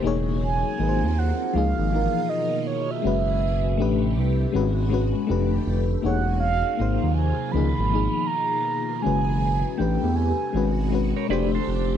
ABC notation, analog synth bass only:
X:1
M:4/4
L:1/16
Q:"Swing 16ths" 1/4=80
K:C#dor
V:1 name="Analog synth bass" clef=bass
E,,,4 G,,, D,,2 z C,, G,,,2 z4 z | F,,,4 =A,,,2 =C,,2 G,,,4 =F,,,2 F,,,2 | E,,,4 G,,, D,,2 z C,, G,,,2 z4 z | F,,,4 =A,,, E,,2 z G,,,4 =F,,,2 F,,,2 |]